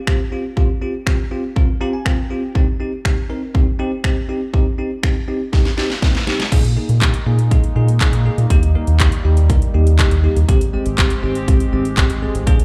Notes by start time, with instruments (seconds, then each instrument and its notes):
0.07 tine electric piano C4 F4 G4, finger snap, kick
0.32 tine electric piano C4 F4 G4
0.57 tine electric piano C4 F4 G4, kick
0.81 tine electric piano C4 F4 G4
1.06 tine electric piano C4 F4 G4, finger snap, kick
1.31 tine electric piano C4 F4 G4
1.56 tine electric piano C4 F4 A#4, kick
1.81 tine electric piano C4 F4 G4 A#5
1.93 tine electric piano G#5
2.05 tine electric piano C4 F4 A#4 G5, finger snap, kick
2.30 tine electric piano C4 F4 G4
2.55 tine electric piano C4 D#4 G4, kick
2.80 tine electric piano C4 D#4 G4
3.05 tine electric piano C4 D#4 G4, finger snap, kick
3.30 tine electric piano C4 D#4 A#4
3.54 tine electric piano C4 D#4 G4, kick
3.79 tine electric piano C4 D#4 G4
4.04 tine electric piano C4 D#4 G4, finger snap, kick
4.29 tine electric piano C4 D#4 G4
4.54 tine electric piano C4 D#4 G4, kick
4.78 tine electric piano C4 D#4 G4
5.03 tine electric piano C4 D#4 G4, finger snap, kick
5.28 tine electric piano C4 D#4 G4
5.53 tine electric piano C4 D#4 G4, kick, snare
5.65 snare
5.77 tine electric piano C4 D#4 G4, snare
5.90 snare
6.02 tine electric piano C4 D#4 A#4, kick, snare
6.15 snare
6.27 tine electric piano C4 D#4 G4, snare
6.40 snare
6.52 analog synth bass A#2, analog synth pad G#3 A#3 D#4, tine electric piano A#3 D#4 G#4, kick, closed hi-hat, crash
6.65 closed hi-hat
6.77 tine electric piano A#3 D#4 G#4
6.89 analog synth bass A#2, closed hi-hat
7.01 tine electric piano A#3 D#4 G4, kick, clap, closed hi-hat
7.14 closed hi-hat
7.26 analog synth bass A#2, tine electric piano A#3 D#4 G#4
7.39 closed hi-hat
7.51 tine electric piano A#3 D#4 G#4, kick, closed hi-hat
7.64 closed hi-hat
7.76 analog synth bass A#2, tine electric piano A#3 D#4 G#4
7.88 closed hi-hat
8.01 tine electric piano A#3 D#4 G#4, kick, clap, closed hi-hat
8.13 analog synth bass A#2, closed hi-hat
8.25 tine electric piano A#3 D#4 G#4
8.38 analog synth bass A#2, closed hi-hat
8.50 analog synth bass D#2, analog synth pad G3, tine electric piano A#3 D#4 G4, kick, closed hi-hat
8.63 closed hi-hat
8.75 tine electric piano A#3 D#4 A#4
8.87 analog synth bass D#2, closed hi-hat
9.00 tine electric piano A#3 D#4 G4, kick, clap, closed hi-hat
9.12 closed hi-hat
9.24 analog synth bass D#2, tine electric piano A#3 D#4 G4
9.37 closed hi-hat
9.49 tine electric piano A#3 D#4 A#4, kick, closed hi-hat
9.62 closed hi-hat
9.74 analog synth bass D#2, tine electric piano A#3 D#4 G4
9.87 closed hi-hat
9.99 tine electric piano A#3 D#4 G4, kick, clap, closed hi-hat
10.11 analog synth bass D#2, closed hi-hat
10.24 tine electric piano A#3 D#4 G4
10.36 analog synth bass D#2, closed hi-hat
10.48 analog synth bass G#1, tine electric piano G#3 C4 G4, analog synth pad G#3 C4 G4, kick, closed hi-hat
10.61 closed hi-hat
10.73 tine electric piano G#3 C4 G4
10.86 analog synth bass G#1, closed hi-hat
10.98 tine electric piano G#3 C4 G4, kick, clap, closed hi-hat
11.10 closed hi-hat
11.23 analog synth bass G#1, tine electric piano G#3 C4 G4
11.35 closed hi-hat
11.48 tine electric piano G#3 C4 G4, kick, closed hi-hat
11.60 closed hi-hat
11.72 analog synth bass G#1, tine electric piano G#3 C4 G4
11.85 closed hi-hat
11.97 tine electric piano G#3 C4 G4, kick, clap, closed hi-hat
12.10 analog synth bass G#1, closed hi-hat
12.22 tine electric piano G#3 C4 G#4
12.35 analog synth bass G#1, closed hi-hat
12.47 analog synth bass A#1, tine electric piano A#3 D4 G#4, analog synth pad A#3 D4, kick, closed hi-hat
12.60 closed hi-hat